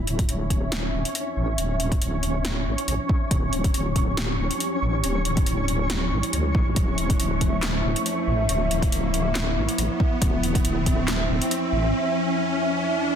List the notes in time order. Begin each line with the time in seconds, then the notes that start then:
Already playing: F3 C#4 E4 E5 C#6, riser
0.07 D1, closed hi-hat
0.19 kick, closed hi-hat
0.29 closed hi-hat
0.50 kick, closed hi-hat
0.72 snare, closed hi-hat
0.94 D1
1.05 closed hi-hat
1.15 closed hi-hat
1.37 A1
1.58 D1, closed hi-hat
1.80 D1, closed hi-hat
1.92 kick, closed hi-hat
2.02 closed hi-hat
2.23 closed hi-hat
2.45 snare, closed hi-hat
2.66 A1
2.78 closed hi-hat
2.88 A1, closed hi-hat
3.09 kick
3.31 D1 G4, kick, closed hi-hat
3.52 D1, closed hi-hat
3.64 kick, closed hi-hat
3.74 closed hi-hat
3.96 kick, closed hi-hat
4.17 snare, closed hi-hat
4.39 D1
4.51 closed hi-hat
4.60 closed hi-hat
4.82 A1
5.04 D1, closed hi-hat
5.25 D1, closed hi-hat
5.37 kick, closed hi-hat
5.46 closed hi-hat
5.68 closed hi-hat
5.90 snare, closed hi-hat
6.12 A1
6.23 closed hi-hat
6.33 D2, closed hi-hat
6.55 A1, kick
6.67 A1
6.76 D1 E5, kick, closed hi-hat
6.98 D1, closed hi-hat
7.10 kick, closed hi-hat
7.20 closed hi-hat
7.41 kick, closed hi-hat
7.63 snare, clap, closed hi-hat
7.84 D1
7.96 closed hi-hat
8.06 closed hi-hat
8.27 A1
8.49 D1, closed hi-hat
8.71 D1, closed hi-hat
8.82 kick, closed hi-hat
8.92 closed hi-hat
9.14 closed hi-hat
9.35 snare, clap, closed hi-hat
9.57 A1
9.69 closed hi-hat
9.78 A1, closed hi-hat
10.00 kick
10.21 D1 E5, kick, closed hi-hat
10.43 D1, closed hi-hat
10.55 kick, closed hi-hat
10.65 closed hi-hat
10.86 kick, closed hi-hat
11.08 snare, clap, closed hi-hat
11.29 D1
11.42 closed hi-hat
11.51 closed hi-hat
11.72 A1
12.81 swell